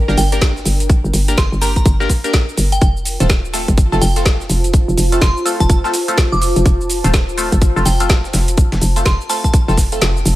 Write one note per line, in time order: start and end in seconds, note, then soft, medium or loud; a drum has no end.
0.00 4.01 D4 medium
0.00 2.82 A#4 medium
0.00 4.02 G5 medium
0.08 0.16 G1 medium
0.08 0.19 A#3 medium
0.08 0.19 D4 medium
0.08 0.19 G4 medium
0.08 0.19 A#4 loud
0.08 shaker soft
0.17 0.64 G1 medium
0.17 0.32 G5 medium
0.17 snare soft
0.17 closed hi-hat medium
0.17 open hi-hat loud
0.17 shaker medium
0.32 0.53 A#3 loud
0.32 0.53 D4 medium
0.32 0.53 G4 medium
0.32 0.53 A#4 loud
0.32 closed hi-hat medium
0.32 closed hi-hat soft
0.32 shaker soft
0.41 kick loud
0.41 snare loud
0.41 closed hi-hat medium
0.41 closed hi-hat soft
0.41 shaker soft
0.56 snare soft
0.56 shaker soft
0.65 1.02 G1 medium
0.65 closed hi-hat medium
0.65 open hi-hat loud
0.65 shaker medium
0.80 closed hi-hat medium
0.80 shaker soft
0.89 kick loud
0.89 closed hi-hat medium
0.89 closed hi-hat soft
0.89 shaker soft
1.04 1.12 G1 medium
1.04 shaker soft
1.13 1.36 G1 medium
1.13 closed hi-hat medium
1.13 open hi-hat loud
1.13 shaker medium
1.28 1.39 A#3 medium
1.28 1.39 D4 medium
1.28 1.39 G4 medium
1.28 1.39 A#4 medium
1.28 closed hi-hat medium
1.28 shaker soft
1.37 1.50 G1 medium
1.37 1.52 C6 medium
1.37 kick loud
1.37 snare loud
1.37 closed hi-hat soft
1.37 closed hi-hat medium
1.37 shaker soft
1.52 1.84 G1 medium
1.52 shaker soft
1.61 1.83 A#3 medium
1.61 1.83 D4 medium
1.61 1.83 G4 medium
1.61 1.83 A#4 loud
1.61 1.71 A#5 medium
1.61 closed hi-hat medium
1.61 open hi-hat loud
1.61 shaker medium
1.76 1.82 A#5 medium
1.76 kick medium
1.76 closed hi-hat medium
1.76 shaker soft
1.85 2.08 G1 medium
1.85 kick loud
1.85 closed hi-hat medium
1.85 closed hi-hat soft
1.85 shaker soft
2.00 2.11 A#3 medium
2.00 2.11 D4 medium
2.00 2.11 G4 medium
2.00 2.11 A#4 loud
2.00 snare soft
2.00 shaker soft
2.10 kick medium
2.10 snare soft
2.10 closed hi-hat medium
2.10 open hi-hat loud
2.10 shaker medium
2.24 2.45 A#3 loud
2.24 2.45 D4 medium
2.24 2.45 G4 medium
2.24 2.45 A#4 loud
2.24 closed hi-hat medium
2.24 shaker soft
2.33 kick loud
2.33 snare loud
2.33 closed hi-hat medium
2.33 closed hi-hat soft
2.33 shaker soft
2.49 shaker soft
2.57 2.80 G1 medium
2.57 closed hi-hat medium
2.57 open hi-hat loud
2.57 shaker medium
2.72 2.87 G5 medium
2.72 closed hi-hat medium
2.72 shaker soft
2.81 3.18 F1 medium
2.81 10.36 F4 medium
2.81 kick loud
2.81 closed hi-hat soft
2.81 closed hi-hat medium
2.81 shaker soft
2.97 shaker soft
3.05 closed hi-hat medium
3.05 open hi-hat loud
3.05 shaker medium
3.14 10.36 C5 medium
3.20 3.66 D#1 loud
3.20 3.31 A3 medium
3.20 3.31 C4 medium
3.20 3.31 F4 medium
3.20 3.31 A4 medium
3.20 10.36 A5 medium
3.20 closed hi-hat soft
3.20 closed hi-hat medium
3.20 shaker soft
3.29 kick loud
3.29 snare loud
3.29 closed hi-hat medium
3.29 closed hi-hat soft
3.29 shaker soft
3.45 shaker soft
3.54 3.75 A3 medium
3.54 3.75 C4 medium
3.54 3.75 F4 medium
3.54 3.75 A4 loud
3.54 closed hi-hat medium
3.54 open hi-hat loud
3.54 shaker medium
3.68 3.90 G1 loud
3.68 kick medium
3.68 closed hi-hat medium
3.68 shaker soft
3.77 kick loud
3.77 closed hi-hat soft
3.77 closed hi-hat medium
3.77 shaker soft
3.92 4.00 F1 medium
3.92 4.03 A3 medium
3.92 4.03 C4 medium
3.92 4.03 F4 medium
3.92 4.03 A4 loud
3.92 shaker soft
4.01 4.48 F1 loud
4.01 4.15 G5 medium
4.01 snare soft
4.01 closed hi-hat medium
4.01 open hi-hat loud
4.01 shaker medium
4.16 4.37 A3 loud
4.16 4.37 C4 medium
4.16 4.37 F4 medium
4.16 4.37 A4 loud
4.16 closed hi-hat medium
4.16 closed hi-hat soft
4.16 shaker soft
4.25 kick loud
4.25 snare loud
4.25 closed hi-hat medium
4.25 closed hi-hat soft
4.25 shaker soft
4.40 snare soft
4.40 shaker soft
4.49 4.86 F1 medium
4.49 closed hi-hat medium
4.49 open hi-hat medium
4.49 shaker medium
4.64 closed hi-hat medium
4.64 shaker soft
4.73 kick loud
4.73 closed hi-hat medium
4.73 closed hi-hat soft
4.73 shaker soft
4.88 4.96 F1 loud
4.88 shaker soft
4.97 5.20 F1 loud
4.97 closed hi-hat medium
4.97 open hi-hat medium
4.97 shaker medium
5.12 5.23 A3 medium
5.12 5.23 C4 medium
5.12 5.23 F4 medium
5.12 5.23 A4 medium
5.12 closed hi-hat medium
5.12 shaker soft
5.21 5.34 F1 medium
5.21 5.36 C6 medium
5.21 kick loud
5.21 snare loud
5.21 closed hi-hat medium
5.21 shaker soft
5.37 shaker soft
5.45 5.67 A3 loud
5.45 5.67 C4 medium
5.45 5.67 F4 medium
5.45 5.67 A4 loud
5.45 closed hi-hat medium
5.45 open hi-hat medium
5.45 shaker medium
5.60 5.82 F1 loud
5.60 5.69 A5 medium
5.60 kick medium
5.60 closed hi-hat medium
5.60 shaker soft
5.70 kick loud
5.70 closed hi-hat medium
5.70 shaker soft
5.84 5.95 A3 medium
5.84 5.95 C4 medium
5.84 5.95 F4 medium
5.84 5.95 A4 loud
5.84 snare soft
5.84 shaker soft
5.94 snare soft
5.94 closed hi-hat medium
5.94 open hi-hat loud
5.94 shaker medium
6.08 6.29 A3 loud
6.08 6.29 C4 medium
6.08 6.29 F4 medium
6.08 6.29 A4 loud
6.08 closed hi-hat medium
6.08 shaker soft
6.18 kick loud
6.18 snare loud
6.18 closed hi-hat medium
6.18 closed hi-hat soft
6.18 shaker soft
6.32 6.54 F1 loud
6.32 6.38 D6 medium
6.32 shaker soft
6.42 6.51 D6 medium
6.42 closed hi-hat medium
6.42 open hi-hat medium
6.42 shaker medium
6.56 6.64 F1 medium
6.56 closed hi-hat medium
6.56 shaker soft
6.66 7.02 F1 medium
6.66 kick loud
6.66 closed hi-hat medium
6.66 shaker soft
6.81 shaker soft
6.90 closed hi-hat medium
6.90 open hi-hat medium
6.90 shaker medium
7.04 7.50 D#1 medium
7.04 7.15 A3 medium
7.04 7.15 C4 medium
7.04 7.15 F4 medium
7.04 7.15 A4 medium
7.04 closed hi-hat soft
7.04 closed hi-hat medium
7.04 shaker soft
7.14 kick loud
7.14 snare loud
7.14 closed hi-hat medium
7.14 shaker soft
7.29 shaker soft
7.38 7.59 A3 loud
7.38 7.59 C4 medium
7.38 7.59 F4 medium
7.38 7.59 A4 loud
7.38 closed hi-hat medium
7.38 open hi-hat medium
7.38 shaker medium
7.52 7.74 G1 loud
7.52 kick medium
7.52 closed hi-hat medium
7.52 shaker soft
7.61 kick loud
7.61 closed hi-hat medium
7.61 shaker soft
7.76 7.84 F1 medium
7.76 7.87 A3 medium
7.76 7.87 C4 medium
7.76 7.87 F4 medium
7.76 7.87 A4 loud
7.76 shaker soft
7.85 8.32 F1 medium
7.85 8.00 G5 medium
7.85 snare soft
7.85 closed hi-hat medium
7.85 open hi-hat medium
7.85 shaker medium
8.00 8.21 A3 medium
8.00 8.21 C4 medium
8.00 8.21 F4 medium
8.00 8.21 A4 loud
8.00 closed hi-hat medium
8.00 closed hi-hat soft
8.00 shaker soft
8.09 kick loud
8.09 snare loud
8.09 closed hi-hat medium
8.09 shaker soft
8.24 snare soft
8.24 shaker soft
8.33 8.70 F1 medium
8.33 snare loud
8.33 closed hi-hat medium
8.33 open hi-hat medium
8.33 shaker medium
8.48 closed hi-hat medium
8.48 shaker soft
8.57 kick loud
8.57 closed hi-hat medium
8.57 shaker soft
8.72 8.80 F1 medium
8.72 snare loud
8.72 closed hi-hat medium
8.72 shaker soft
8.81 9.04 F1 loud
8.81 open hi-hat loud
8.81 shaker medium
8.96 9.07 A3 medium
8.96 9.07 C4 medium
8.96 9.07 F4 medium
8.96 9.07 A4 medium
8.96 closed hi-hat medium
8.96 shaker soft
9.05 9.18 F1 medium
9.05 9.20 C6 medium
9.05 kick loud
9.05 snare loud
9.05 closed hi-hat medium
9.05 shaker soft
9.21 shaker soft
9.29 9.51 A3 loud
9.29 9.51 C4 medium
9.29 9.51 F4 medium
9.29 9.51 A4 loud
9.29 9.39 A5 medium
9.29 closed hi-hat medium
9.29 open hi-hat loud
9.29 shaker medium
9.44 9.50 A5 medium
9.44 kick medium
9.44 closed hi-hat medium
9.44 shaker soft
9.53 kick loud
9.53 closed hi-hat medium
9.53 shaker soft
9.68 10.00 F1 medium
9.68 9.79 A3 medium
9.68 9.79 C4 medium
9.68 9.79 F4 medium
9.68 9.79 A4 loud
9.68 snare soft
9.68 shaker soft
9.77 kick medium
9.77 snare soft
9.77 closed hi-hat medium
9.77 open hi-hat loud
9.77 shaker medium
9.92 10.36 A3 medium
9.92 10.36 C4 medium
9.92 10.36 F4 medium
9.92 10.36 A4 medium
9.92 closed hi-hat medium
9.92 shaker soft
10.01 10.24 F1 medium
10.01 snare loud
10.01 closed hi-hat soft
10.01 closed hi-hat medium
10.01 shaker soft
10.17 shaker soft
10.25 10.36 F1 medium
10.25 closed hi-hat medium
10.25 open hi-hat medium
10.25 shaker medium